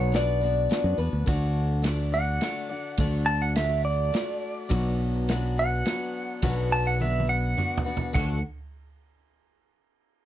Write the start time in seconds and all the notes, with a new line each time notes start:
Already playing: B1 B2 F#3 B3 D4 F#4 B4 C#5
0.12 B3 D4 F#4 B4 D5, snare, closed hi-hat
0.28 tambourine
0.40 B3 D4 F#4 B4, tambourine
0.56 tambourine
0.69 B3 D4 F#4 B4, snare, closed hi-hat, tambourine
0.84 F#2, tambourine
0.98 E2 B3 D4 F#4 B4
1.13 D2
1.26 D2 D3 A3 D4 F#4 D5, kick, ride
1.82 A3 D4 F#4 D5, snare, ride
2.12 D4 F#4 D5 F#5
2.41 A3 D4 F#4 D5, snare, ride
2.69 D4 F#4 D5
2.98 D2 D3 A3 D4 F#4 D5, kick, ride
3.26 A5
3.42 F#5
3.56 A3 D4 F#4 D5 E5, snare, ride
3.85 D5
4.13 A3 D4 F#4 D5, snare, ride
4.69 B1 B2 F#3 B3 D4 F#4 B4, kick, ride, tambourine
5.00 tambourine
5.14 tambourine
5.28 B3 D4 F#4 B4, snare, ride
5.57 F#5, tambourine
5.85 B3 D4 F#4 B4, snare, ride
6.00 tambourine
6.42 B1 B2 F#3 B3 D4 F#4 B4, kick, ride, tambourine
6.71 A5, tambourine
6.85 F#5, tambourine
6.99 B3 D4 F#4 B4 E5, high tom
7.15 tambourine
7.20 high tom
7.27 F#5, tambourine
7.42 tambourine
7.57 B3 D4 F#4 B4, mid tom, tambourine
7.78 floor tom
7.85 B3 D4 F#4 B4
7.97 floor tom, tambourine
8.13 D2 D3 A3 D4 F#4 A4 F#5, kick, floor tom, tambourine, crash